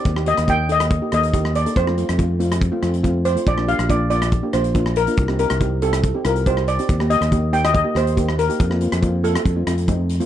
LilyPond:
<<
  \new Staff \with { instrumentName = "Steel pan" } { \time 4/4 \key ees \lydian \tempo 4 = 140 d''8 ees''8 g''8 ees''4 ees''4 d''8 | c''2. r8 c''8 | d''8 f''8 d''8 d''4 c''4 bes'8~ | bes'8 bes'4 a'4 bes'8 c''8 d''8~ |
d''8 ees''4 g''16 ees''16 ees''8 c''4 bes'8~ | bes'4. a'2 r8 | }
  \new Staff \with { instrumentName = "Steel pan" } { \time 4/4 \key ees \lydian r16 <bes ees' g'>16 <bes ees' g'>16 r16 <bes ees' g'>16 r16 <bes ees' a'>8 r16 <bes ees' g'>16 <bes ees' a'>16 r16 <bes ees' g'>8 r16 <bes ees' a'>16 | r16 <a c' f'>16 <a c' f'>16 r16 <a c' f'>16 r16 <a c' f'>8 r16 <a c' f'>16 <a c' f'>16 r16 <a c' f'>8 r16 <a c' f'>16 | r16 <bes d' f'>16 <bes d' g'>16 r16 <bes d' f'>16 r16 <bes d' f'>8 r16 <bes d' g'>16 <bes d' f'>16 r16 <bes d' f'>8 r16 <bes d' f'>16 | r16 <c' ees' g'>16 <c' ees' g'>16 r16 <c' ees' g'>16 r16 <c' ees' g'>8 r16 <c' ees' g'>16 <c' ees' f'>16 r16 <c' ees' g'>8 r16 <c' ees' g'>16 |
r16 <bes ees' g'>16 <bes ees' g'>16 r16 <bes ees' g'>16 r16 <bes ees' g'>8 r16 <bes ees' g'>16 <bes ees' g'>16 r16 <bes ees' g'>8 r16 <bes ees' g'>16 | r16 <bes c' f'>16 <bes c' f'>16 r16 <bes c' f'>16 r16 <bes c' f'>8 r16 <a c' f'>16 <a c' f'>16 r16 <a c' ees'>8 r16 <a c' f'>16 | }
  \new Staff \with { instrumentName = "Fingered electric bass" } { \clef bass \time 4/4 \key ees \lydian ees,8. ees,4.~ ees,16 ees,4. | f,8. f,4.~ f,16 f,4. | bes,,8. bes,,4.~ bes,,16 bes,,4. | c,8. c,4.~ c,16 c,4. |
ees,8. ees,4.~ ees,16 ees,4. | f,8. f,4~ f,16 f,8 f,4. | }
  \new DrumStaff \with { instrumentName = "Drums" } \drummode { \time 4/4 <hh bd>16 ss16 hh16 <hh ss>16 <hh bd>8 hh16 <hh ss>16 <hh bd>8 <hh ss>16 hh16 <hh bd>16 ss16 hh16 hh16 | <hh bd>16 ss16 hh16 <hh ss>16 <hh bd>8 hh16 <hh ss>16 <hh bd>8 <hh ss>16 hh16 <hh bd>8 hh16 hh16 | <hh bd>16 ss16 hh16 <hh ss>16 <hh bd>8 hh16 <hh ss>16 <hh bd>8 <hh ss>16 hh16 <hh bd>16 ss16 hh16 hh16 | <hh bd>16 ss16 hh16 <hh ss>16 <hh bd>8 hh16 <hh ss>16 <hh bd>8 <hh ss>16 hh16 <hh bd>16 ss16 hh16 hh16 |
<hh bd>16 ss16 hh16 <hh ss>16 <hh bd>8 hh16 <hh ss>16 <hh bd>8 <hh ss>16 hh16 <hh bd>16 ss16 hh16 hh16 | <hh bd>16 ss16 hh16 <hh ss>16 <hh bd>8 hh16 <hh ss>16 <hh bd>8 <hh ss>16 hh16 <hh bd>8 hh16 hh16 | }
>>